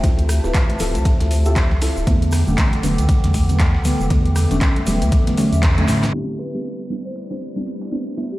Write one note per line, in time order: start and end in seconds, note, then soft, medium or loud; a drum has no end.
0.00 0.40 D2 loud
0.00 0.40 C4 medium
0.00 0.40 E4 medium
0.00 0.41 F4 medium
0.00 0.41 G4 medium
0.00 0.41 A4 loud
0.00 2.03 C5 medium
0.00 2.03 E5 medium
0.00 2.05 A5 medium
0.00 kick loud
0.00 closed hi-hat medium
0.00 ride medium
0.00 shaker soft
0.19 closed hi-hat soft
0.29 cross-stick medium
0.29 open hi-hat loud
0.29 ride medium
0.29 shaker loud
0.44 0.53 D1 medium
0.44 0.69 C4 medium
0.44 0.69 E4 medium
0.44 0.69 F4 medium
0.44 0.69 G4 medium
0.44 0.70 B4 loud
0.44 snare soft
0.44 shaker soft
0.54 kick loud
0.54 snare loud
0.54 clap loud
0.54 closed hi-hat medium
0.54 ride medium
0.54 shaker soft
0.69 closed hi-hat soft
0.69 high conga medium
0.79 0.97 D1 medium
0.79 1.17 C4 medium
0.79 1.17 E4 medium
0.79 1.17 F4 medium
0.79 1.17 G4 medium
0.79 1.17 A4 loud
0.79 open hi-hat loud
0.79 ride medium
0.79 low conga medium
0.79 shaker medium
0.94 1.04 C2 medium
0.94 closed hi-hat medium
0.94 high conga medium
0.94 shaker soft
1.05 kick loud
1.05 closed hi-hat medium
1.05 ride medium
1.05 shaker soft
1.20 1.73 D2 medium
1.20 1.42 C4 medium
1.20 1.42 E4 medium
1.20 1.42 F4 medium
1.20 1.42 G4 medium
1.20 1.42 A4 medium
1.20 snare medium
1.20 closed hi-hat medium
1.20 high conga medium
1.31 open hi-hat loud
1.31 ride medium
1.31 shaker medium
1.45 1.60 C4 loud
1.45 1.60 E4 medium
1.45 1.60 F4 medium
1.45 1.60 G4 medium
1.45 1.60 A4 loud
1.45 closed hi-hat soft
1.45 shaker medium
1.56 kick loud
1.56 snare loud
1.56 clap loud
1.56 closed hi-hat medium
1.56 ride medium
1.56 shaker soft
1.71 1.90 C2 medium
1.71 ride soft
1.71 low conga medium
1.81 2.04 C4 medium
1.81 2.04 E4 medium
1.81 2.05 F4 medium
1.81 2.05 G4 medium
1.81 2.05 A4 medium
1.81 snare soft
1.81 open hi-hat loud
1.81 ride medium
1.81 shaker medium
1.97 2.05 D1 medium
1.97 shaker medium
2.07 2.44 E2 loud
2.07 2.44 D3 loud
2.07 2.44 F#3 medium
2.07 2.44 G3 medium
2.07 2.44 A3 medium
2.07 2.44 B3 loud
2.07 6.10 A4 medium
2.07 4.08 F#5 medium
2.07 6.10 G5 medium
2.07 6.10 D6 medium
2.07 kick loud
2.07 closed hi-hat medium
2.07 ride medium
2.07 shaker soft
2.22 closed hi-hat soft
2.32 cross-stick medium
2.32 snare soft
2.32 open hi-hat loud
2.32 ride medium
2.32 shaker loud
2.47 2.56 E1 medium
2.47 2.73 D3 medium
2.47 2.73 F#3 medium
2.47 2.73 G3 medium
2.47 2.73 A3 medium
2.47 2.73 C#4 loud
2.47 shaker soft
2.58 kick loud
2.58 snare loud
2.58 clap loud
2.58 closed hi-hat medium
2.58 ride medium
2.58 shaker soft
2.73 closed hi-hat soft
2.73 ride soft
2.73 high conga medium
2.82 3.00 E1 medium
2.82 3.20 D3 medium
2.82 3.20 F#3 medium
2.82 3.20 G3 medium
2.82 3.20 A3 medium
2.82 3.20 B3 loud
2.82 open hi-hat loud
2.82 ride medium
2.82 low conga medium
2.82 shaker medium
2.98 3.07 D2 medium
2.98 closed hi-hat medium
2.98 high conga medium
2.98 shaker soft
3.09 kick loud
3.09 closed hi-hat medium
3.09 ride medium
3.09 shaker soft
3.23 3.76 E2 medium
3.23 3.45 D3 medium
3.23 3.46 F#3 medium
3.23 3.46 G3 medium
3.23 3.46 A3 medium
3.23 3.46 B3 medium
3.23 snare soft
3.23 closed hi-hat medium
3.34 kick medium
3.34 open hi-hat loud
3.34 ride medium
3.34 high conga medium
3.34 shaker medium
3.49 3.63 D3 loud
3.49 3.63 F#3 medium
3.49 3.63 G3 medium
3.49 3.63 A3 medium
3.49 3.63 B3 loud
3.49 closed hi-hat soft
3.49 ride soft
3.49 shaker soft
3.59 kick loud
3.59 snare loud
3.59 clap loud
3.59 closed hi-hat medium
3.59 ride medium
3.59 shaker soft
3.75 3.93 D2 medium
3.75 snare medium
3.85 4.08 D3 medium
3.85 4.08 F#3 medium
3.85 4.08 G3 medium
3.85 4.08 A3 medium
3.85 4.08 B3 medium
3.85 open hi-hat loud
3.85 ride medium
3.85 shaker medium
4.00 4.09 E1 medium
4.00 high conga medium
4.00 shaker medium
4.10 4.47 E2 loud
4.10 4.47 D3 medium
4.10 4.47 F#3 medium
4.10 4.47 G3 medium
4.10 4.47 A3 medium
4.10 4.47 B3 loud
4.10 6.12 E5 medium
4.10 kick loud
4.10 closed hi-hat medium
4.10 ride medium
4.10 shaker soft
4.25 closed hi-hat soft
4.36 cross-stick medium
4.36 open hi-hat loud
4.36 ride medium
4.36 shaker medium
4.51 4.60 E1 medium
4.51 4.76 D3 medium
4.51 4.76 F#3 medium
4.51 4.76 G3 medium
4.51 4.76 A3 medium
4.51 4.76 C#4 loud
4.51 snare soft
4.51 closed hi-hat soft
4.51 shaker soft
4.61 kick loud
4.61 snare loud
4.61 clap loud
4.61 closed hi-hat medium
4.61 ride medium
4.61 shaker soft
4.76 closed hi-hat soft
4.76 high conga medium
4.86 5.03 E1 medium
4.86 5.23 D3 medium
4.86 5.24 F#3 medium
4.86 5.24 G3 medium
4.86 5.24 A3 medium
4.86 5.24 B3 loud
4.86 open hi-hat loud
4.86 ride medium
4.86 low conga medium
4.86 shaker medium
5.02 5.10 D2 medium
5.02 closed hi-hat medium
5.02 high conga medium
5.02 shaker medium
5.12 kick loud
5.12 closed hi-hat medium
5.12 ride medium
5.12 shaker soft
5.27 5.35 D3 medium
5.27 5.35 F#3 medium
5.27 5.35 G3 medium
5.27 5.36 A3 medium
5.27 5.36 B3 medium
5.27 snare medium
5.27 closed hi-hat medium
5.27 high conga medium
5.37 5.74 D3 loud
5.37 5.74 F#3 medium
5.37 5.74 G3 medium
5.37 5.75 A3 medium
5.37 5.75 C#4 loud
5.37 open hi-hat loud
5.37 ride medium
5.37 shaker medium
5.53 5.86 E2 medium
5.53 closed hi-hat soft
5.53 shaker medium
5.63 kick loud
5.63 snare loud
5.63 clap loud
5.63 closed hi-hat medium
5.63 ride medium
5.63 shaker soft
5.78 6.11 D3 loud
5.78 6.11 F#3 medium
5.78 6.11 G3 medium
5.78 6.11 A3 medium
5.78 6.12 C#4 loud
5.78 closed hi-hat soft
5.78 ride soft
5.78 low conga medium
5.88 6.10 A2 loud
5.88 snare soft
5.88 snare medium
5.88 open hi-hat loud
5.88 ride medium
5.88 shaker loud
6.03 snare loud
6.03 snare medium
6.03 closed hi-hat soft
6.03 ride medium
6.03 shaker soft
6.14 6.51 G3 medium
6.14 8.39 A3 medium
6.14 6.51 B3 medium
6.14 6.51 C4 medium
6.14 6.51 D4 medium
6.14 8.39 E4 medium
6.14 6.51 E4 loud
6.14 6.34 G4 medium
6.14 8.39 G4 medium
6.14 8.39 B4 medium
6.14 8.39 D5 medium
6.14 ride medium
6.39 6.68 B4 medium
6.39 cross-stick medium
6.39 snare soft
6.39 ride medium
6.54 6.79 G3 medium
6.54 6.79 B3 medium
6.54 6.80 C4 medium
6.54 6.80 D4 medium
6.54 6.80 G4 medium
6.65 ride medium
6.80 ride soft
6.90 7.27 G3 medium
6.90 7.27 B3 medium
6.90 7.27 C4 medium
6.90 7.27 D4 medium
6.90 7.27 E4 loud
6.90 ride medium
7.05 7.23 C5 medium
7.15 ride medium
7.30 7.52 G3 medium
7.30 7.52 B3 medium
7.30 7.52 C4 medium
7.30 7.52 D4 medium
7.30 7.53 E4 medium
7.30 7.58 C5 medium
7.30 snare soft
7.41 ride medium
7.56 7.70 G3 medium
7.56 7.70 B3 medium
7.56 7.70 C4 medium
7.56 7.70 D4 medium
7.56 7.70 E4 loud
7.56 ride soft
7.66 ride medium
7.81 snare medium
7.91 8.15 G3 medium
7.91 8.15 B3 medium
7.91 8.15 C4 medium
7.91 8.15 D4 medium
7.91 8.15 E4 medium
7.91 ride medium
8.17 8.39 G3 medium
8.17 8.39 B3 medium
8.17 8.39 C4 medium
8.17 8.39 D4 medium
8.17 8.39 E4 loud
8.17 ride medium
8.32 8.39 G4 medium